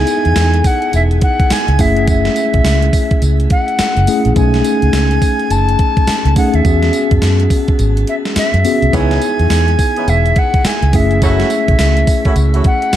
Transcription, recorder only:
Already playing: G#5
0.66 F#5
0.95 E5
1.23 F#5
1.52 G#5
1.80 E5
2.09 E5
3.51 F#5
4.37 G#5
5.51 A5
6.37 F#5
6.55 E5
8.09 E5
8.38 E5
8.95 G#5
10.09 E5
10.38 F#5
10.66 G#5
10.95 E5
11.24 E5
12.66 F#5

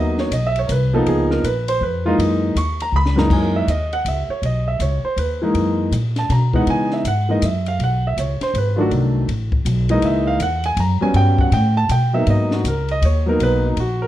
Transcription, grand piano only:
Already playing: F#3 A#3 B3 D#4 D#5
0.20 C#5
0.33 D#5
0.47 E5
0.59 C#5
0.67 A#4
0.72 B4
0.93 F3 A#3 B3 D#4 A4
1.08 G#4
1.31 A#4
1.45 B4
1.69 C5
1.83 B4
2.05 E3 G#3 A#3 D#4 F4
2.57 C#6
2.82 A#5
2.96 B5
3.16 F#2 E3 G#3 A#3 D#4 A#5
3.33 G#5
3.56 E5
3.70 D#5
3.93 F#5
4.08 E5
4.30 C#5
4.45 D#5
4.68 E5
4.82 C#5
5.05 C5
5.19 B4
5.42 E3 G#3 A#3 D#4
6.19 A5
6.32 A#5
6.54 E3 G#3 B3 D#4 F#5
6.70 G#5
6.93 E5
7.08 F#5
7.29 E3 G#3 A#3 D#4 D#5
7.45 E5
7.68 F5
7.84 F#5
8.07 E5
8.19 C#5
8.43 C5
8.58 B4
8.76 D#3 F#3 A3 D4 F4
8.81 F#4
9.90 E3 G#3 A#3 D#4 D#5
10.05 E5
10.27 F5
10.42 F#5
10.66 G#5
10.80 A#5
11.01 F#3 G3 B3 C#4 G#5
11.16 G5
11.41 F#5
11.54 G5
11.77 A5
11.91 G5
12.13 F#3 A#3 B3 D#4 E5
12.30 D#5
12.54 F#4
12.68 A#4
12.91 D#5
13.05 C#5
13.26 F#3 A#3 B3 D#4 A#4
13.43 B4
13.66 D#4
13.80 F#4
14.02 A#4

